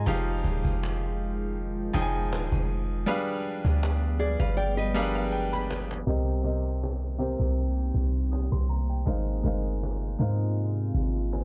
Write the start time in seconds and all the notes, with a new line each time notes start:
Already playing: G#3 F4 G#5
0.06 F1 D#3 F3 D#4 G4 G#4 F5, cajon bass
0.44 D#1, cajon bass
0.65 F1, cajon bass
0.83 cajon slap
1.19 cajon slap
1.57 cajon slap
1.93 F1 F3 D#4 G#4 G5, cajon bass, cajon slap
2.02 G#5
2.32 D#1, cajon slap
2.52 F1, cajon bass
2.69 cajon slap
3.06 F3 G3 B3 D4 G#4 B4 F5, cajon slap
3.45 cajon slap
3.65 D2, cajon bass
3.83 cajon slap
4.19 G#4 D5, cajon slap
4.40 G1 B4 F5, cajon bass
4.57 D5 G5, cajon slap
4.77 B4 D#5
4.94 G3 D4 G#4 A#4 F5, cajon slap
5.02 B4
5.15 F5
5.32 G5, cajon slap
5.53 B5, cajon slap
5.71 cajon slap
5.91 cajon slap
6.07 C2 C3 D#3 A#3 C4 G4 A#4 D#5, cajon bass
6.43 C3 C4 G4 A#4 D#5
6.83 cajon slap
7.18 C3 C4 G4 A#4 C5
7.40 C2, cajon bass
7.57 cajon slap
7.94 C2, cajon bass
8.32 D#6, cajon slap
8.52 C2 C6, cajon bass
8.69 A#5, cajon slap
8.90 G5
9.06 G#1 C3 G#3 C4 D#4 F4 A#4 C5 F5, cajon bass
9.43 G1 G#3 D#4 A#4 C5 F5, cajon bass
9.83 cajon slap
10.19 G#2 G#3 D#4 A#4 C5 F5, cajon bass
10.57 cajon slap
10.94 G#1, cajon bass
11.32 G#5, cajon slap